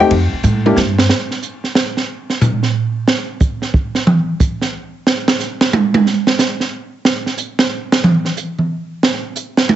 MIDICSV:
0, 0, Header, 1, 5, 480
1, 0, Start_track
1, 0, Key_signature, -1, "major"
1, 0, Tempo, 330396
1, 163, Time_signature, 3, 2, 24, 8
1, 14175, End_track
2, 0, Start_track
2, 0, Title_t, "Grand piano"
2, 0, Program_c, 0, 0
2, 0, Note_on_c, 0, 57, 83
2, 0, Note_on_c, 0, 60, 74
2, 0, Note_on_c, 0, 63, 70
2, 3, Note_on_c, 0, 79, 108
2, 4, Note_on_c, 0, 67, 85
2, 103, Note_off_c, 0, 79, 0
2, 146, Note_off_c, 0, 57, 0
2, 148, Note_off_c, 0, 60, 0
2, 149, Note_off_c, 0, 63, 0
2, 153, Note_off_c, 0, 67, 0
2, 956, Note_on_c, 0, 58, 72
2, 959, Note_on_c, 0, 62, 65
2, 963, Note_on_c, 0, 64, 66
2, 964, Note_on_c, 0, 67, 78
2, 1109, Note_off_c, 0, 58, 0
2, 1110, Note_off_c, 0, 62, 0
2, 1112, Note_off_c, 0, 64, 0
2, 1113, Note_off_c, 0, 67, 0
2, 14175, End_track
3, 0, Start_track
3, 0, Title_t, "Upright bass"
3, 0, Program_c, 1, 32
3, 157, Note_on_c, 1, 41, 90
3, 445, Note_off_c, 1, 41, 0
3, 636, Note_on_c, 1, 45, 96
3, 1100, Note_off_c, 1, 45, 0
3, 1109, Note_on_c, 1, 43, 91
3, 1582, Note_off_c, 1, 43, 0
3, 14175, End_track
4, 0, Start_track
4, 0, Title_t, "Muted upright bass strokes"
4, 470, Note_on_c, 9, 29, 42
4, 615, Note_off_c, 9, 29, 0
4, 14175, End_track
5, 0, Start_track
5, 0, Title_t, "Drums"
5, 155, Note_on_c, 9, 51, 73
5, 158, Note_on_c, 9, 36, 26
5, 300, Note_off_c, 9, 51, 0
5, 303, Note_off_c, 9, 36, 0
5, 629, Note_on_c, 9, 44, 56
5, 634, Note_on_c, 9, 48, 50
5, 774, Note_off_c, 9, 44, 0
5, 780, Note_off_c, 9, 48, 0
5, 958, Note_on_c, 9, 48, 72
5, 1103, Note_off_c, 9, 48, 0
5, 1110, Note_on_c, 9, 38, 77
5, 1256, Note_off_c, 9, 38, 0
5, 1431, Note_on_c, 9, 38, 103
5, 1576, Note_off_c, 9, 38, 0
5, 1589, Note_on_c, 9, 38, 98
5, 1735, Note_off_c, 9, 38, 0
5, 1901, Note_on_c, 9, 38, 34
5, 2046, Note_off_c, 9, 38, 0
5, 2069, Note_on_c, 9, 44, 52
5, 2215, Note_off_c, 9, 44, 0
5, 2380, Note_on_c, 9, 38, 33
5, 2526, Note_off_c, 9, 38, 0
5, 2547, Note_on_c, 9, 38, 99
5, 2693, Note_off_c, 9, 38, 0
5, 2862, Note_on_c, 9, 38, 49
5, 3007, Note_off_c, 9, 38, 0
5, 3336, Note_on_c, 9, 38, 43
5, 3482, Note_off_c, 9, 38, 0
5, 3502, Note_on_c, 9, 44, 52
5, 3508, Note_on_c, 9, 43, 91
5, 3647, Note_off_c, 9, 44, 0
5, 3653, Note_off_c, 9, 43, 0
5, 3817, Note_on_c, 9, 38, 38
5, 3962, Note_off_c, 9, 38, 0
5, 4468, Note_on_c, 9, 38, 100
5, 4614, Note_off_c, 9, 38, 0
5, 4942, Note_on_c, 9, 44, 53
5, 4950, Note_on_c, 9, 36, 73
5, 5088, Note_off_c, 9, 44, 0
5, 5096, Note_off_c, 9, 36, 0
5, 5257, Note_on_c, 9, 38, 34
5, 5402, Note_off_c, 9, 38, 0
5, 5432, Note_on_c, 9, 36, 78
5, 5577, Note_off_c, 9, 36, 0
5, 5737, Note_on_c, 9, 38, 51
5, 5882, Note_off_c, 9, 38, 0
5, 5912, Note_on_c, 9, 47, 100
5, 6057, Note_off_c, 9, 47, 0
5, 6390, Note_on_c, 9, 44, 52
5, 6396, Note_on_c, 9, 36, 75
5, 6535, Note_off_c, 9, 44, 0
5, 6541, Note_off_c, 9, 36, 0
5, 6704, Note_on_c, 9, 38, 45
5, 6850, Note_off_c, 9, 38, 0
5, 7361, Note_on_c, 9, 38, 97
5, 7506, Note_off_c, 9, 38, 0
5, 7670, Note_on_c, 9, 38, 98
5, 7815, Note_off_c, 9, 38, 0
5, 7840, Note_on_c, 9, 44, 56
5, 7845, Note_on_c, 9, 38, 37
5, 7985, Note_off_c, 9, 44, 0
5, 7991, Note_off_c, 9, 38, 0
5, 8151, Note_on_c, 9, 38, 94
5, 8296, Note_off_c, 9, 38, 0
5, 8330, Note_on_c, 9, 48, 103
5, 8475, Note_off_c, 9, 48, 0
5, 8634, Note_on_c, 9, 48, 102
5, 8780, Note_off_c, 9, 48, 0
5, 8807, Note_on_c, 9, 38, 39
5, 8952, Note_off_c, 9, 38, 0
5, 9108, Note_on_c, 9, 38, 93
5, 9254, Note_off_c, 9, 38, 0
5, 9277, Note_on_c, 9, 44, 54
5, 9283, Note_on_c, 9, 38, 89
5, 9423, Note_off_c, 9, 44, 0
5, 9428, Note_off_c, 9, 38, 0
5, 9593, Note_on_c, 9, 38, 46
5, 9738, Note_off_c, 9, 38, 0
5, 10243, Note_on_c, 9, 38, 98
5, 10389, Note_off_c, 9, 38, 0
5, 10552, Note_on_c, 9, 38, 39
5, 10697, Note_off_c, 9, 38, 0
5, 10714, Note_on_c, 9, 44, 56
5, 10859, Note_off_c, 9, 44, 0
5, 11025, Note_on_c, 9, 38, 96
5, 11171, Note_off_c, 9, 38, 0
5, 11511, Note_on_c, 9, 38, 97
5, 11656, Note_off_c, 9, 38, 0
5, 11679, Note_on_c, 9, 47, 101
5, 11825, Note_off_c, 9, 47, 0
5, 11984, Note_on_c, 9, 38, 37
5, 12130, Note_off_c, 9, 38, 0
5, 12155, Note_on_c, 9, 44, 54
5, 12301, Note_off_c, 9, 44, 0
5, 12473, Note_on_c, 9, 47, 45
5, 12618, Note_off_c, 9, 47, 0
5, 13121, Note_on_c, 9, 38, 101
5, 13266, Note_off_c, 9, 38, 0
5, 13593, Note_on_c, 9, 44, 55
5, 13738, Note_off_c, 9, 44, 0
5, 13909, Note_on_c, 9, 38, 101
5, 14054, Note_off_c, 9, 38, 0
5, 14080, Note_on_c, 9, 48, 105
5, 14175, Note_off_c, 9, 48, 0
5, 14175, End_track
0, 0, End_of_file